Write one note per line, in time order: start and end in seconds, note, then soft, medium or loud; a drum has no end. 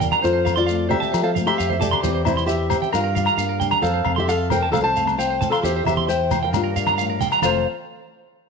0.00 0.13 E2 medium
0.00 0.21 G2 medium
0.00 0.22 G3 medium
0.00 0.22 A#3 medium
0.00 0.22 D4 medium
0.00 0.24 F4 medium
0.00 0.07 G5 medium
0.00 low conga medium
0.00 shekere medium
0.12 0.18 A#5 medium
0.12 high conga medium
0.12 low agogo medium
0.22 2.04 F2 medium
0.22 0.93 F2 medium
0.22 0.55 F4 medium
0.22 1.12 A4 medium
0.22 0.29 C5 medium
0.22 0.59 C5 loud
0.22 shekere medium
0.33 0.40 C5 medium
0.45 2.01 F3 medium
0.45 0.52 F5 medium
0.45 high conga medium
0.45 low agogo medium
0.45 shekere medium
0.56 0.89 F4 medium
0.56 0.90 D5 loud
0.56 0.63 C6 medium
0.56 shekere soft
0.66 1.35 A3 medium
0.66 0.74 F5 medium
0.66 shekere medium
0.89 1.58 C4 medium
0.89 1.22 G4 medium
0.89 0.96 C5 medium
0.89 1.22 E5 loud
0.89 low conga medium
0.89 low agogo medium
1.00 1.07 A5 medium
1.00 high conga medium
1.00 shekere soft
1.12 1.48 F3 medium
1.12 1.79 A4 medium
1.12 1.19 C5 medium
1.12 low agogo medium
1.12 shekere medium
1.23 1.29 A4 medium
1.23 1.31 C5 medium
1.23 1.30 F5 medium
1.35 2.01 A3 medium
1.35 1.42 F5 medium
1.35 high conga medium
1.35 shekere medium
1.46 1.72 G4 medium
1.46 1.71 E5 loud
1.46 1.54 C6 medium
1.46 low agogo medium
1.58 1.94 F2 medium
1.58 1.65 F5 medium
1.58 muted nylon-string guitar stroke medium
1.58 shekere medium
1.70 1.76 C5 medium
1.70 1.80 E5 medium
1.70 high conga medium
1.80 2.22 G4 medium
1.80 2.01 A4 medium
1.80 2.23 D5 medium
1.80 1.87 A5 medium
1.80 low conga medium
1.80 shekere loud
1.91 1.98 C6 medium
1.91 high conga medium
1.91 low agogo medium
2.03 2.72 E2 medium
2.03 2.91 E3 medium
2.03 2.24 C4 medium
2.03 2.47 E4 medium
2.03 2.69 G4 medium
2.03 2.10 C5 medium
2.03 low conga medium
2.03 shekere medium
2.14 2.21 C5 medium
2.25 2.91 C4 medium
2.25 2.47 E4 medium
2.25 2.50 C5 medium
2.25 2.33 E5 medium
2.25 high conga medium
2.25 low conga medium
2.25 low agogo medium
2.25 shekere medium
2.37 2.44 C6 medium
2.37 shekere soft
2.46 2.91 E4 medium
2.46 2.89 G4 medium
2.46 2.54 E5 medium
2.46 2.90 E5 loud
2.46 shekere medium
2.70 2.91 G4 medium
2.70 2.77 C5 medium
2.70 low conga medium
2.70 low agogo medium
2.70 shekere loud
2.82 2.88 G5 medium
2.82 high conga medium
2.82 shekere soft
2.92 3.28 G2 medium
2.92 3.81 G2 medium
2.92 3.84 F4 medium
2.92 2.99 A#4 medium
2.92 3.57 A#4 medium
2.92 3.58 F5 medium
2.92 low agogo medium
2.92 shekere medium
3.04 3.10 A#4 medium
3.15 3.81 G3 medium
3.15 3.22 F5 medium
3.15 high conga medium
3.15 shekere medium
3.26 3.33 A#5 medium
3.26 low agogo medium
3.26 shekere soft
3.37 3.72 G2 medium
3.37 3.81 A#3 medium
3.37 3.45 F5 medium
3.37 shekere medium
3.49 3.56 A#4 medium
3.60 3.82 D4 medium
3.60 3.67 G5 medium
3.60 low conga medium
3.60 shekere medium
3.71 3.78 A#5 medium
3.71 high conga medium
3.71 low agogo medium
3.82 4.00 F2 medium
3.82 5.64 F2 medium
3.82 4.14 A4 medium
3.82 4.29 A4 medium
3.82 3.89 C5 medium
3.82 4.14 F5 loud
3.82 shekere medium
3.94 4.00 C5 medium
4.05 4.72 F2 medium
4.05 4.51 C4 medium
4.05 4.12 F5 medium
4.05 low conga medium
4.05 low agogo medium
4.16 4.28 G4 medium
4.16 4.29 E5 medium
4.16 4.23 C6 medium
4.16 high conga medium
4.28 4.49 A4 medium
4.28 4.74 A4 medium
4.28 4.51 F5 medium
4.28 4.35 F5 medium
4.28 shekere medium
4.50 5.19 C4 soft
4.50 4.71 A#4 medium
4.50 4.58 C5 medium
4.50 4.73 G5 loud
4.50 low conga medium
4.50 low agogo medium
4.50 shekere medium
4.63 4.69 A5 medium
4.72 5.41 C2 medium
4.72 4.82 A4 medium
4.72 5.62 A4 medium
4.72 4.80 C5 medium
4.72 4.83 F5 loud
4.72 high conga medium
4.72 low conga medium
4.72 low agogo medium
4.72 shekere medium
4.82 5.15 C5 medium
4.82 4.91 C5 medium
4.82 5.16 A5 loud
4.96 5.62 A3 medium
4.96 5.03 F5 medium
4.96 shekere medium
5.07 high conga medium
5.07 low agogo medium
5.07 shekere soft
5.18 5.50 C5 medium
5.18 5.25 F5 medium
5.18 5.50 G5 loud
5.18 muted nylon-string guitar stroke medium
5.18 shekere medium
5.30 5.37 C5 medium
5.41 5.62 F3 medium
5.41 5.47 A5 medium
5.41 high conga medium
5.41 low conga medium
5.41 shekere medium
5.50 5.62 A4 medium
5.50 5.64 F5 medium
5.50 5.59 C6 medium
5.50 low agogo medium
5.50 shekere soft
5.63 5.81 E2 loud
5.63 6.51 E3 medium
5.63 6.52 E4 medium
5.63 5.84 G4 medium
5.63 6.52 G4 medium
5.63 5.71 C5 medium
5.63 5.86 C5 medium
5.63 5.86 E5 loud
5.63 shekere medium
5.76 5.82 C5 medium
5.85 6.53 E2 medium
5.85 6.07 G4 medium
5.85 6.09 C5 medium
5.85 5.93 E5 medium
5.85 6.08 E5 loud
5.85 low conga medium
5.85 low agogo medium
5.85 shekere medium
5.97 6.04 C6 medium
5.97 high conga medium
6.08 6.40 C5 medium
6.08 6.31 C5 medium
6.08 6.15 E5 medium
6.08 6.44 G5 medium
6.08 shekere medium
6.31 6.38 C5 medium
6.31 6.51 C5 medium
6.31 low conga medium
6.31 low agogo medium
6.31 shekere medium
6.43 7.18 A#4 medium
6.43 7.18 F5 medium
6.43 6.49 G5 medium
6.53 6.98 G2 medium
6.53 7.22 G2 loud
6.53 7.41 G3 medium
6.53 7.42 A#3 medium
6.53 6.75 D4 medium
6.53 7.46 F4 medium
6.53 muted clean electric guitar stroke medium
6.53 high conga medium
6.53 low conga medium
6.53 low agogo medium
6.53 shekere medium
6.64 6.70 A#4 medium
6.76 7.41 D4 medium
6.76 6.82 F5 medium
6.76 shekere medium
6.87 6.94 A#5 medium
6.87 high conga medium
6.87 low agogo medium
6.87 shekere soft
6.98 7.21 A2 medium
6.98 7.04 F5 medium
6.98 shekere medium
7.10 7.16 A#4 medium
7.20 7.43 G2 medium
7.20 7.27 G5 medium
7.20 high conga medium
7.20 low conga medium
7.20 shekere medium
7.32 7.39 A#5 medium
7.32 low agogo medium
7.32 shekere soft
7.42 7.65 F1 medium
7.42 7.64 F2 medium
7.42 7.64 F3 medium
7.42 7.65 A3 medium
7.42 7.64 A4 medium
7.42 7.64 C5 medium
7.42 7.65 C5 medium
7.42 7.64 F5 medium
7.42 high conga medium
7.42 low agogo loud
7.42 shekere medium
7.46 7.65 C4 medium
7.46 7.65 A4 medium